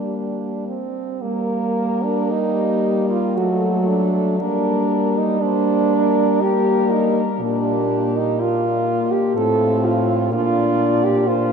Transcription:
0, 0, Header, 1, 5, 480
1, 0, Start_track
1, 0, Key_signature, -2, "minor"
1, 0, Tempo, 1092896
1, 542, Time_signature, 3, 2, 24, 8
1, 1014, Tempo, 1052632
1, 1974, Tempo, 1003344
1, 3414, Tempo, 961538
1, 5461, End_track
2, 0, Start_track
2, 0, Title_t, "French horn"
2, 0, Program_c, 0, 60
2, 548, Note_on_c, 0, 70, 51
2, 1015, Note_on_c, 0, 67, 55
2, 1022, Note_off_c, 0, 70, 0
2, 1504, Note_on_c, 0, 69, 57
2, 1510, Note_off_c, 0, 67, 0
2, 1971, Note_on_c, 0, 70, 52
2, 1978, Note_off_c, 0, 69, 0
2, 2454, Note_off_c, 0, 70, 0
2, 2463, Note_on_c, 0, 72, 51
2, 2706, Note_on_c, 0, 70, 59
2, 2714, Note_off_c, 0, 72, 0
2, 3416, Note_off_c, 0, 70, 0
2, 3419, Note_on_c, 0, 67, 73
2, 4237, Note_off_c, 0, 67, 0
2, 4384, Note_on_c, 0, 65, 55
2, 4871, Note_on_c, 0, 74, 72
2, 4879, Note_off_c, 0, 65, 0
2, 5336, Note_on_c, 0, 72, 61
2, 5343, Note_off_c, 0, 74, 0
2, 5461, Note_off_c, 0, 72, 0
2, 5461, End_track
3, 0, Start_track
3, 0, Title_t, "French horn"
3, 0, Program_c, 1, 60
3, 0, Note_on_c, 1, 62, 41
3, 293, Note_off_c, 1, 62, 0
3, 296, Note_on_c, 1, 60, 44
3, 534, Note_on_c, 1, 58, 55
3, 541, Note_off_c, 1, 60, 0
3, 893, Note_on_c, 1, 62, 60
3, 900, Note_off_c, 1, 58, 0
3, 1015, Note_on_c, 1, 63, 70
3, 1021, Note_off_c, 1, 62, 0
3, 1371, Note_off_c, 1, 63, 0
3, 1374, Note_on_c, 1, 65, 66
3, 1495, Note_on_c, 1, 66, 57
3, 1502, Note_off_c, 1, 65, 0
3, 1731, Note_on_c, 1, 62, 57
3, 1738, Note_off_c, 1, 66, 0
3, 1964, Note_off_c, 1, 62, 0
3, 1967, Note_on_c, 1, 62, 67
3, 2337, Note_on_c, 1, 63, 64
3, 2344, Note_off_c, 1, 62, 0
3, 2448, Note_on_c, 1, 62, 78
3, 2455, Note_off_c, 1, 63, 0
3, 2931, Note_on_c, 1, 67, 69
3, 2938, Note_off_c, 1, 62, 0
3, 3168, Note_on_c, 1, 63, 58
3, 3175, Note_off_c, 1, 67, 0
3, 3328, Note_off_c, 1, 63, 0
3, 3415, Note_on_c, 1, 62, 64
3, 3785, Note_on_c, 1, 63, 66
3, 3793, Note_off_c, 1, 62, 0
3, 3902, Note_on_c, 1, 65, 78
3, 3910, Note_off_c, 1, 63, 0
3, 4257, Note_on_c, 1, 67, 68
3, 4265, Note_off_c, 1, 65, 0
3, 4378, Note_off_c, 1, 67, 0
3, 4381, Note_on_c, 1, 69, 75
3, 4624, Note_on_c, 1, 65, 65
3, 4631, Note_off_c, 1, 69, 0
3, 4861, Note_off_c, 1, 65, 0
3, 4864, Note_on_c, 1, 65, 85
3, 5219, Note_on_c, 1, 67, 76
3, 5226, Note_off_c, 1, 65, 0
3, 5333, Note_on_c, 1, 65, 94
3, 5341, Note_off_c, 1, 67, 0
3, 5461, Note_off_c, 1, 65, 0
3, 5461, End_track
4, 0, Start_track
4, 0, Title_t, "French horn"
4, 0, Program_c, 2, 60
4, 0, Note_on_c, 2, 58, 38
4, 393, Note_off_c, 2, 58, 0
4, 545, Note_on_c, 2, 58, 54
4, 1494, Note_on_c, 2, 57, 48
4, 1500, Note_off_c, 2, 58, 0
4, 1971, Note_off_c, 2, 57, 0
4, 1974, Note_on_c, 2, 58, 45
4, 2446, Note_off_c, 2, 58, 0
4, 2452, Note_on_c, 2, 58, 47
4, 2925, Note_off_c, 2, 58, 0
4, 2936, Note_on_c, 2, 58, 53
4, 3333, Note_off_c, 2, 58, 0
4, 3414, Note_on_c, 2, 58, 51
4, 3762, Note_off_c, 2, 58, 0
4, 3904, Note_on_c, 2, 58, 53
4, 4383, Note_on_c, 2, 60, 53
4, 4390, Note_off_c, 2, 58, 0
4, 4864, Note_off_c, 2, 60, 0
4, 4867, Note_on_c, 2, 62, 61
4, 5327, Note_off_c, 2, 62, 0
4, 5341, Note_on_c, 2, 62, 58
4, 5461, Note_off_c, 2, 62, 0
4, 5461, End_track
5, 0, Start_track
5, 0, Title_t, "French horn"
5, 0, Program_c, 3, 60
5, 0, Note_on_c, 3, 55, 40
5, 391, Note_off_c, 3, 55, 0
5, 542, Note_on_c, 3, 55, 49
5, 1496, Note_on_c, 3, 54, 50
5, 1503, Note_off_c, 3, 55, 0
5, 1971, Note_off_c, 3, 54, 0
5, 1974, Note_on_c, 3, 55, 51
5, 3410, Note_on_c, 3, 46, 48
5, 3417, Note_off_c, 3, 55, 0
5, 4249, Note_off_c, 3, 46, 0
5, 4380, Note_on_c, 3, 45, 58
5, 4862, Note_on_c, 3, 46, 62
5, 4869, Note_off_c, 3, 45, 0
5, 5461, Note_off_c, 3, 46, 0
5, 5461, End_track
0, 0, End_of_file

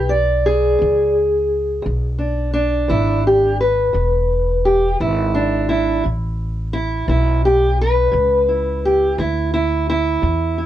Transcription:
0, 0, Header, 1, 3, 480
1, 0, Start_track
1, 0, Tempo, 696056
1, 1277, Time_signature, 12, 3, 24, 8
1, 7350, End_track
2, 0, Start_track
2, 0, Title_t, "Steel-string acoustic guitar"
2, 0, Program_c, 0, 25
2, 0, Note_on_c, 0, 40, 76
2, 0, Note_on_c, 0, 56, 58
2, 0, Note_on_c, 0, 67, 87
2, 63, Note_on_c, 0, 74, 84
2, 71, Note_off_c, 0, 67, 0
2, 263, Note_off_c, 0, 40, 0
2, 315, Note_on_c, 0, 68, 87
2, 543, Note_on_c, 0, 52, 60
2, 790, Note_off_c, 0, 74, 0
2, 982, Note_off_c, 0, 52, 0
2, 1256, Note_on_c, 0, 40, 73
2, 1286, Note_off_c, 0, 56, 0
2, 1504, Note_off_c, 0, 68, 0
2, 1507, Note_on_c, 0, 62, 51
2, 1699, Note_off_c, 0, 40, 0
2, 1740, Note_off_c, 0, 62, 0
2, 1748, Note_on_c, 0, 62, 90
2, 1987, Note_on_c, 0, 52, 60
2, 1996, Note_on_c, 0, 64, 88
2, 2237, Note_off_c, 0, 64, 0
2, 2256, Note_on_c, 0, 67, 69
2, 2425, Note_off_c, 0, 52, 0
2, 2473, Note_off_c, 0, 62, 0
2, 2485, Note_off_c, 0, 67, 0
2, 2488, Note_on_c, 0, 71, 82
2, 2711, Note_on_c, 0, 40, 76
2, 3147, Note_off_c, 0, 40, 0
2, 3203, Note_off_c, 0, 71, 0
2, 3209, Note_on_c, 0, 67, 83
2, 3444, Note_off_c, 0, 67, 0
2, 3450, Note_on_c, 0, 52, 63
2, 3454, Note_on_c, 0, 64, 78
2, 3686, Note_on_c, 0, 62, 83
2, 3876, Note_off_c, 0, 52, 0
2, 3915, Note_off_c, 0, 64, 0
2, 3923, Note_on_c, 0, 64, 94
2, 4161, Note_off_c, 0, 64, 0
2, 4163, Note_off_c, 0, 62, 0
2, 4164, Note_on_c, 0, 45, 69
2, 4594, Note_off_c, 0, 45, 0
2, 4643, Note_on_c, 0, 64, 101
2, 4881, Note_off_c, 0, 64, 0
2, 4882, Note_on_c, 0, 52, 61
2, 4891, Note_on_c, 0, 64, 85
2, 5125, Note_off_c, 0, 64, 0
2, 5138, Note_on_c, 0, 67, 88
2, 5313, Note_off_c, 0, 52, 0
2, 5369, Note_off_c, 0, 67, 0
2, 5388, Note_on_c, 0, 71, 98
2, 5595, Note_on_c, 0, 45, 77
2, 5850, Note_on_c, 0, 64, 47
2, 6030, Note_off_c, 0, 45, 0
2, 6094, Note_off_c, 0, 71, 0
2, 6105, Note_on_c, 0, 67, 82
2, 6332, Note_off_c, 0, 67, 0
2, 6334, Note_on_c, 0, 52, 69
2, 6340, Note_off_c, 0, 64, 0
2, 6340, Note_on_c, 0, 64, 82
2, 6568, Note_off_c, 0, 64, 0
2, 6576, Note_on_c, 0, 64, 96
2, 6759, Note_off_c, 0, 52, 0
2, 6808, Note_off_c, 0, 64, 0
2, 6825, Note_on_c, 0, 64, 103
2, 7047, Note_on_c, 0, 45, 68
2, 7287, Note_off_c, 0, 64, 0
2, 7295, Note_on_c, 0, 64, 51
2, 7350, Note_off_c, 0, 45, 0
2, 7350, Note_off_c, 0, 64, 0
2, 7350, End_track
3, 0, Start_track
3, 0, Title_t, "Upright bass"
3, 0, Program_c, 1, 32
3, 0, Note_on_c, 1, 35, 79
3, 536, Note_off_c, 1, 35, 0
3, 563, Note_on_c, 1, 37, 83
3, 1259, Note_off_c, 1, 37, 0
3, 1281, Note_on_c, 1, 35, 74
3, 1978, Note_off_c, 1, 35, 0
3, 2003, Note_on_c, 1, 32, 85
3, 2699, Note_off_c, 1, 32, 0
3, 2720, Note_on_c, 1, 28, 78
3, 3418, Note_off_c, 1, 28, 0
3, 3450, Note_on_c, 1, 32, 85
3, 4143, Note_off_c, 1, 32, 0
3, 4176, Note_on_c, 1, 33, 72
3, 4866, Note_off_c, 1, 33, 0
3, 4881, Note_on_c, 1, 35, 87
3, 5579, Note_off_c, 1, 35, 0
3, 5605, Note_on_c, 1, 37, 77
3, 6301, Note_off_c, 1, 37, 0
3, 6332, Note_on_c, 1, 38, 88
3, 7024, Note_off_c, 1, 38, 0
3, 7053, Note_on_c, 1, 40, 81
3, 7350, Note_off_c, 1, 40, 0
3, 7350, End_track
0, 0, End_of_file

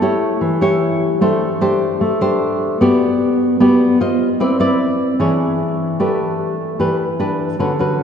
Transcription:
0, 0, Header, 1, 2, 480
1, 0, Start_track
1, 0, Key_signature, 1, "major"
1, 0, Tempo, 399202
1, 1455, Time_signature, 4, 2, 24, 8
1, 9655, End_track
2, 0, Start_track
2, 0, Title_t, "Nylon-string guitar"
2, 0, Program_c, 0, 24
2, 0, Note_on_c, 0, 57, 62
2, 21, Note_on_c, 0, 64, 51
2, 26, Note_on_c, 0, 67, 52
2, 33, Note_on_c, 0, 73, 57
2, 473, Note_off_c, 0, 57, 0
2, 493, Note_on_c, 0, 52, 63
2, 700, Note_off_c, 0, 64, 0
2, 702, Note_off_c, 0, 67, 0
2, 705, Note_off_c, 0, 73, 0
2, 736, Note_on_c, 0, 64, 55
2, 744, Note_on_c, 0, 67, 63
2, 749, Note_on_c, 0, 73, 65
2, 1417, Note_off_c, 0, 64, 0
2, 1421, Note_off_c, 0, 67, 0
2, 1423, Note_off_c, 0, 73, 0
2, 1430, Note_off_c, 0, 52, 0
2, 1456, Note_on_c, 0, 57, 61
2, 1461, Note_on_c, 0, 62, 53
2, 1463, Note_on_c, 0, 67, 57
2, 1468, Note_on_c, 0, 72, 66
2, 1766, Note_off_c, 0, 62, 0
2, 1768, Note_off_c, 0, 67, 0
2, 1770, Note_off_c, 0, 72, 0
2, 1937, Note_on_c, 0, 62, 51
2, 1944, Note_on_c, 0, 67, 57
2, 1948, Note_on_c, 0, 72, 57
2, 2391, Note_off_c, 0, 57, 0
2, 2413, Note_off_c, 0, 62, 0
2, 2416, Note_off_c, 0, 67, 0
2, 2416, Note_on_c, 0, 57, 64
2, 2418, Note_off_c, 0, 72, 0
2, 2659, Note_on_c, 0, 62, 55
2, 2666, Note_on_c, 0, 67, 58
2, 2667, Note_on_c, 0, 72, 70
2, 3338, Note_off_c, 0, 62, 0
2, 3340, Note_off_c, 0, 67, 0
2, 3342, Note_off_c, 0, 72, 0
2, 3350, Note_off_c, 0, 57, 0
2, 3377, Note_on_c, 0, 59, 67
2, 3379, Note_on_c, 0, 66, 57
2, 3388, Note_on_c, 0, 74, 65
2, 3389, Note_on_c, 0, 67, 55
2, 4020, Note_off_c, 0, 66, 0
2, 4022, Note_off_c, 0, 67, 0
2, 4026, Note_off_c, 0, 74, 0
2, 4312, Note_off_c, 0, 59, 0
2, 4332, Note_on_c, 0, 59, 63
2, 4332, Note_on_c, 0, 66, 45
2, 4338, Note_on_c, 0, 67, 54
2, 4343, Note_on_c, 0, 74, 53
2, 4773, Note_off_c, 0, 66, 0
2, 4777, Note_off_c, 0, 67, 0
2, 4779, Note_off_c, 0, 74, 0
2, 4788, Note_off_c, 0, 59, 0
2, 4816, Note_on_c, 0, 65, 56
2, 4823, Note_on_c, 0, 72, 54
2, 4825, Note_on_c, 0, 75, 57
2, 5138, Note_off_c, 0, 65, 0
2, 5138, Note_off_c, 0, 72, 0
2, 5141, Note_off_c, 0, 75, 0
2, 5292, Note_on_c, 0, 64, 54
2, 5296, Note_on_c, 0, 60, 71
2, 5299, Note_on_c, 0, 71, 52
2, 5303, Note_on_c, 0, 74, 57
2, 5494, Note_off_c, 0, 64, 0
2, 5497, Note_off_c, 0, 71, 0
2, 5498, Note_off_c, 0, 74, 0
2, 5525, Note_on_c, 0, 64, 55
2, 5532, Note_on_c, 0, 71, 55
2, 5538, Note_on_c, 0, 74, 70
2, 6210, Note_off_c, 0, 64, 0
2, 6213, Note_off_c, 0, 71, 0
2, 6216, Note_off_c, 0, 74, 0
2, 6230, Note_off_c, 0, 60, 0
2, 6247, Note_on_c, 0, 52, 60
2, 6249, Note_on_c, 0, 62, 47
2, 6254, Note_on_c, 0, 68, 51
2, 6259, Note_on_c, 0, 73, 56
2, 6895, Note_off_c, 0, 62, 0
2, 6898, Note_off_c, 0, 68, 0
2, 6899, Note_off_c, 0, 73, 0
2, 7186, Note_off_c, 0, 52, 0
2, 7210, Note_on_c, 0, 57, 54
2, 7212, Note_on_c, 0, 62, 44
2, 7215, Note_on_c, 0, 67, 50
2, 7221, Note_on_c, 0, 71, 49
2, 7857, Note_off_c, 0, 62, 0
2, 7857, Note_off_c, 0, 67, 0
2, 7862, Note_off_c, 0, 71, 0
2, 8148, Note_off_c, 0, 57, 0
2, 8168, Note_on_c, 0, 52, 53
2, 8172, Note_on_c, 0, 62, 43
2, 8172, Note_on_c, 0, 67, 44
2, 8183, Note_on_c, 0, 71, 49
2, 8481, Note_off_c, 0, 62, 0
2, 8483, Note_off_c, 0, 67, 0
2, 8485, Note_off_c, 0, 71, 0
2, 8651, Note_on_c, 0, 62, 49
2, 8655, Note_on_c, 0, 67, 46
2, 8662, Note_on_c, 0, 71, 50
2, 9107, Note_off_c, 0, 52, 0
2, 9113, Note_off_c, 0, 62, 0
2, 9116, Note_off_c, 0, 67, 0
2, 9118, Note_off_c, 0, 71, 0
2, 9132, Note_on_c, 0, 50, 54
2, 9135, Note_on_c, 0, 61, 45
2, 9141, Note_on_c, 0, 66, 48
2, 9142, Note_on_c, 0, 71, 51
2, 9274, Note_off_c, 0, 61, 0
2, 9276, Note_off_c, 0, 66, 0
2, 9279, Note_off_c, 0, 71, 0
2, 9370, Note_on_c, 0, 61, 47
2, 9377, Note_on_c, 0, 66, 42
2, 9384, Note_on_c, 0, 71, 53
2, 9655, Note_off_c, 0, 50, 0
2, 9655, Note_off_c, 0, 61, 0
2, 9655, Note_off_c, 0, 66, 0
2, 9655, Note_off_c, 0, 71, 0
2, 9655, End_track
0, 0, End_of_file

